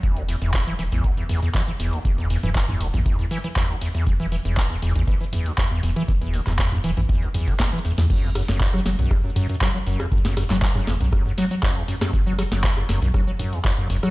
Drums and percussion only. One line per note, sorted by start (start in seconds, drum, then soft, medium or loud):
0.03 kick loud
0.03 closed hi-hat medium
0.16 closed hi-hat soft
0.29 open hi-hat loud
0.42 closed hi-hat soft
0.54 kick loud
0.54 clap loud
0.54 closed hi-hat medium
0.79 open hi-hat loud
0.92 closed hi-hat soft
1.04 kick loud
1.04 closed hi-hat medium
1.17 closed hi-hat soft
1.29 mid tom medium
1.29 open hi-hat loud
1.43 closed hi-hat soft
1.55 kick loud
1.55 clap loud
1.55 closed hi-hat medium
1.80 open hi-hat loud
1.93 closed hi-hat soft
2.05 kick loud
2.05 closed hi-hat medium
2.18 closed hi-hat soft
2.30 open hi-hat loud
2.43 closed hi-hat soft
2.43 mid tom medium
2.55 kick loud
2.55 clap loud
2.55 closed hi-hat medium
2.69 mid tom medium
2.81 open hi-hat loud
2.94 closed hi-hat medium
2.94 mid tom medium
3.06 kick loud
3.06 closed hi-hat medium
3.19 closed hi-hat soft
3.31 open hi-hat loud
3.44 closed hi-hat medium
3.56 kick loud
3.56 clap loud
3.56 closed hi-hat medium
3.81 open hi-hat medium
3.95 closed hi-hat soft
4.07 kick loud
4.07 closed hi-hat medium
4.20 closed hi-hat soft
4.32 open hi-hat medium
4.45 closed hi-hat soft
4.57 kick loud
4.57 clap loud
4.57 closed hi-hat medium
4.82 open hi-hat loud
4.96 closed hi-hat medium
5.07 kick loud
5.07 closed hi-hat medium
5.21 closed hi-hat soft
5.33 mid tom medium
5.33 open hi-hat loud
5.46 closed hi-hat medium
5.58 kick loud
5.58 clap loud
5.58 closed hi-hat medium
5.83 open hi-hat loud
5.96 closed hi-hat medium
6.08 kick loud
6.08 closed hi-hat medium
6.22 closed hi-hat soft
6.34 open hi-hat loud
6.47 clap soft
6.47 closed hi-hat medium
6.47 mid tom medium
6.59 kick loud
6.59 clap loud
6.59 closed hi-hat medium
6.72 closed hi-hat soft
6.72 mid tom medium
6.84 open hi-hat loud
6.97 closed hi-hat medium
6.97 mid tom medium
7.09 kick loud
7.09 closed hi-hat medium
7.22 closed hi-hat soft
7.34 mid tom medium
7.34 open hi-hat loud
7.48 kick medium
7.48 closed hi-hat medium
7.60 kick loud
7.60 snare loud
7.60 clap loud
7.60 closed hi-hat medium
7.73 closed hi-hat soft
7.85 open hi-hat loud
7.98 snare medium
7.98 closed hi-hat medium
8.10 kick loud
8.10 closed hi-hat medium
8.10 crash loud
8.35 cross-stick medium
8.35 open hi-hat loud
8.48 snare medium
8.48 closed hi-hat medium
8.60 kick loud
8.60 clap loud
8.60 closed hi-hat medium
8.74 cross-stick soft
8.86 snare medium
8.86 open hi-hat loud
8.99 closed hi-hat medium
9.11 kick loud
9.11 cross-stick medium
9.11 closed hi-hat medium
9.36 mid tom medium
9.36 open hi-hat loud
9.49 closed hi-hat medium
9.61 kick loud
9.61 cross-stick soft
9.61 clap loud
9.61 closed hi-hat medium
9.87 open hi-hat loud
10.00 cross-stick medium
10.00 closed hi-hat medium
10.12 kick loud
10.12 closed hi-hat medium
10.25 snare medium
10.37 cross-stick medium
10.37 open hi-hat loud
10.50 snare medium
10.50 clap soft
10.50 closed hi-hat medium
10.50 mid tom medium
10.62 kick loud
10.62 clap loud
10.62 closed hi-hat medium
10.75 cross-stick soft
10.75 mid tom medium
10.87 snare medium
10.87 open hi-hat loud
11.01 closed hi-hat medium
11.01 mid tom medium
11.13 kick loud
11.13 cross-stick medium
11.13 closed hi-hat medium
11.38 snare soft
11.38 open hi-hat loud
11.51 closed hi-hat medium
11.63 kick loud
11.63 cross-stick soft
11.63 clap loud
11.63 closed hi-hat medium
11.88 open hi-hat loud
12.01 cross-stick medium
12.01 snare medium
12.01 closed hi-hat medium
12.13 kick loud
12.13 closed hi-hat medium
12.39 cross-stick medium
12.39 open hi-hat loud
12.52 snare medium
12.52 closed hi-hat medium
12.64 kick loud
12.64 clap loud
12.64 closed hi-hat medium
12.77 cross-stick soft
12.89 snare medium
12.89 open hi-hat loud
13.02 closed hi-hat medium
13.14 kick loud
13.14 cross-stick medium
13.14 closed hi-hat soft
13.39 mid tom medium
13.39 open hi-hat loud
13.53 closed hi-hat medium
13.65 kick loud
13.65 cross-stick soft
13.65 clap loud
13.65 closed hi-hat soft
13.90 open hi-hat loud
14.03 cross-stick medium
14.03 closed hi-hat medium